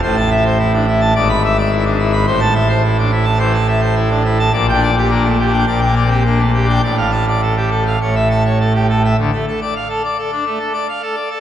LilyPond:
<<
  \new Staff \with { instrumentName = "Pipe organ" } { \time 4/4 \key a \phrygian \tempo 4 = 105 << { c''16 a''16 e''16 c''16 e'16 d'16 e'16 a''16 d''16 b''16 e''16 d''16 e'16 d'16 e'16 b''16 | c''16 a''16 e''16 c''16 e'16 d'16 e'16 a''16 c''16 a''16 e''16 c''16 e'16 d'16 e'16 a''16 | d''16 g''16 d''16 g'16 bes16 a16 g'16 g''16 d''16 g''16 d''16 g'16 bes16 a16 g'16 g''16 | d''16 f''16 a''16 d''16 a'16 g'16 a'16 f''16 cis''16 e''16 a''16 cis''16 a'16 g'16 a'16 e''16 |
r4 f''16 r2 r8. | } \\ { a,2 gis,2 | a,2 e16 r4. r16 | \tuplet 3/2 { bes,8 d'8 r8 d'8 r8 d'8 bes,8 bes8 c'8 d'8 r8 d'8 } | a,2 a,2 |
d16 a16 a'16 d''16 r16 a'16 d''16 a'16 d'16 a16 a'16 d''16 f''16 a'16 d''16 a'16 | } >> }
  \new Staff \with { instrumentName = "Pipe organ" } { \clef bass \time 4/4 \key a \phrygian a,,2 gis,,2 | a,,1 | bes,,2 bes,,2 | a,,2 a,,2 |
d,16 r2. r8. | }
>>